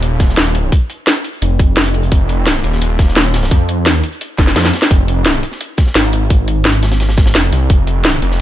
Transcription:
Already playing: D#1
0.02 closed hi-hat
0.20 kick, snare, closed hi-hat
0.29 snare
0.37 D#1, snare, closed hi-hat
0.55 closed hi-hat
0.72 kick, closed hi-hat
0.90 closed hi-hat
1.07 snare, closed hi-hat
1.15 closed hi-hat
1.25 closed hi-hat
1.33 closed hi-hat
1.42 F1, closed hi-hat
1.59 kick, closed hi-hat
1.77 snare, closed hi-hat
1.86 closed hi-hat
1.94 closed hi-hat
2.03 closed hi-hat
2.12 F1, kick, closed hi-hat
2.29 closed hi-hat
2.47 snare, closed hi-hat
2.64 D#1, closed hi-hat
2.73 snare
2.82 closed hi-hat
2.99 kick, snare, closed hi-hat
3.08 snare
3.16 D#1, snare, closed hi-hat
3.34 snare, closed hi-hat
3.42 snare, closed hi-hat
3.51 F2, kick, closed hi-hat
3.68 closed hi-hat
3.86 snare, closed hi-hat
4.03 closed hi-hat
4.12 closed hi-hat
4.21 closed hi-hat
4.38 F1, kick, snare, closed hi-hat
4.47 snare
4.56 F2, snare, closed hi-hat
4.61 snare, closed hi-hat
4.65 snare, closed hi-hat
4.73 snare, closed hi-hat
4.82 snare, closed hi-hat
4.90 F1, kick, closed hi-hat
5.08 closed hi-hat
5.25 snare, closed hi-hat
5.43 closed hi-hat
5.51 snare
5.61 closed hi-hat
5.77 kick, snare, closed hi-hat
5.86 snare
5.95 G#1, snare, closed hi-hat
6.13 closed hi-hat
6.30 kick, closed hi-hat
6.48 closed hi-hat
6.65 snare, closed hi-hat
6.74 closed hi-hat
6.83 snare, closed hi-hat
6.92 snare, closed hi-hat
7.00 snare, closed hi-hat
7.09 snare, closed hi-hat
7.17 kick, snare, closed hi-hat
7.26 snare, closed hi-hat
7.35 F1, snare, closed hi-hat
7.44 closed hi-hat
7.52 C2, snare, closed hi-hat
7.70 F1, kick, closed hi-hat
7.87 closed hi-hat
8.05 snare, closed hi-hat
8.22 F1, closed hi-hat
8.31 snare

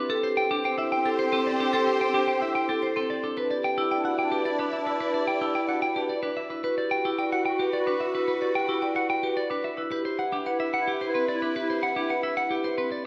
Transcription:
Already playing: D4 B4
0.10 C4 G4 A4 C5
0.23 G4 C5
0.37 C4 G5
0.51 D4 G4
0.64 C4 C5 G5
0.78 E4 E5
0.92 C4 G5
1.05 G4 A4
1.19 C5
1.24 C4
1.32 C4 A4
1.47 D5
1.52 C4
1.60 D4 A4
1.73 A4
1.81 C4
1.87 G4 C5
2.01 G5
2.10 C4
2.14 D4 G4
2.28 C5 G5
2.38 C4 E4 E5
2.55 G5
2.67 C4 G4 A4
2.83 C5
2.95 C4 A4
3.10 D5
3.24 D4 A4
3.37 D4 E4 B4 D5
3.50 G4 D5
3.64 D4 G5
3.78 E4 G4
3.91 D4 D5 G5
4.05 F#4 F#5
4.19 D4 G5
4.32 G4 B4
4.45 D5
4.51 D4
4.59 D4 B4
4.73 E5
4.79 D4
4.86 E4 B4
5.00 B4
5.08 D4
5.14 G4 D5
5.28 G5
5.37 D4
5.41 E4 G4
5.55 D5 G5
5.65 D4 F#4 F#5
5.82 G5
5.93 D4 G4 B4
6.09 D5
6.22 D4 B4
6.37 E5
6.50 E4 B4
6.64 F#4 B4
6.78 G4 D5
6.91 F#4 G5
7.05 E4 G4
7.18 F#4 D5 G5
7.32 F#4 F#5
7.46 G5
7.50 F#4
7.59 G4 B4
7.73 D5
7.78 F#4
7.87 D4 B4
8.00 E5
8.07 F#4
8.14 E4 B4
8.28 B4
8.35 F#4
8.41 G4 D5
8.55 G5
8.64 F#4
8.69 E4 G4
8.82 D5 G5
8.92 F#4 F#5
9.10 G5
9.21 F#4 G4 B4
9.37 D5
9.50 D4 F#4 B4
9.64 E5
9.77 E4 B4
9.91 E4 G4 B4
10.05 C5
10.19 E4 F#5
10.32 D4 G4
10.46 E4 B4 F#5
10.60 E4 E5
10.74 E4 F#5
10.87 G4
11.01 B4 C5
11.06 E4
11.14 C4 B4
11.28 D5
11.34 E4
11.42 D4 B4
11.55 G4 B4
11.62 E4
11.70 C5
11.83 F#5
11.91 E4
11.96 D4 G4
12.10 B4 F#5
12.20 E4 E5
12.37 F#5
12.49 E4 G4
12.64 B4 C5
12.77 C4 E4 B4
12.92 D5

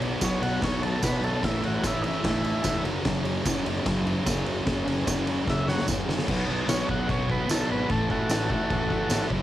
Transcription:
Already playing: B2
0.00 B1 B3, ride
0.06 F#3
0.21 B1 B2 F#3 C#5, kick, snare, ride, tambourine
0.25 B3
0.41 B1 F#3 B3 F#5, ride
0.62 B1 B2 F#3 B3 C#5, kick, snare, ride
0.82 F#3 B3 A4, ride
1.02 B1 B2 F#3 B3 B4, kick, snare, ride, tambourine
1.22 B1 A4, ride
1.43 A1 A2 E3 A3 E4, kick, snare, ride
1.62 A1 A3 F#4, ride
1.67 E3
1.83 A1 A2 E3 A3 E4, kick, snare, ride, tambourine
2.02 A3 D#4, ride
2.06 E3 E4
2.23 A1 A2 E3 A3, kick, snare, ride
2.43 E3 A3, ride
2.63 E1 A2 E3, kick, snare, ride, tambourine
2.67 A3
2.83 F#1 F#2 C#3 F#3, ride
3.05 F#1 F#2 C#3 F#3, kick, snare, ride
3.23 F#1 F#3, ride
3.27 C#3
3.44 F#1 F#2 C#3 F#3, kick, snare, ride, tambourine
3.64 F#1 C#3 F#3, ride
3.83 F#1 F#2 C#3 F#3, kick, snare, ride
4.03 C#3 F#3, ride
4.23 F#1 F#2 C#3 F#3, kick, snare, ride, tambourine
4.45 F#1, ride
4.64 F#1 F#2 C#3 F#3, kick, snare, ride
4.84 F#1 C#3 F#3, ride
5.06 F#1 F#2 C#3 F#3, kick, snare, ride, tambourine
5.26 C#3 F#3, ride
5.46 F#1 F#2 C#3 F#3 E5, kick, snare
5.67 C#3 F#3 C#5 F#5, snare
5.79 snare
5.86 F#1 F#2 C#3, kick, snare, tambourine
5.91 F#3
6.06 F#1, snare
6.19 snare
6.27 B1 B2 F#3 B3, kick, crash
6.47 B1 B3
6.52 F#3
6.67 B1 B2 F#3 C#5, snare, tambourine, crash
6.72 B3
6.88 B1 F#3 B3 F#5, kick
7.07 B1 B2 F#3 B3 C#5, kick, crash
7.28 F#3 B3 B4, kick
7.48 B1 B2 F#3 A4, snare, tambourine, crash
7.52 B3
7.70 G#1 B4
7.88 A1 A2 E3 A4, kick, crash
7.92 A3
8.10 A1 A3 F#4 A4, kick
8.14 E3
8.29 A1 A2 E3, snare, tambourine, crash
8.34 A3
8.50 E3 A3, kick
8.69 A1 A2 E3, kick, crash
8.74 A3
8.89 A3, kick
8.93 E3
9.09 G#1 A2 E3, snare, tambourine, crash
9.13 A3
9.29 F#1 F#2 C#3 F#3, kick

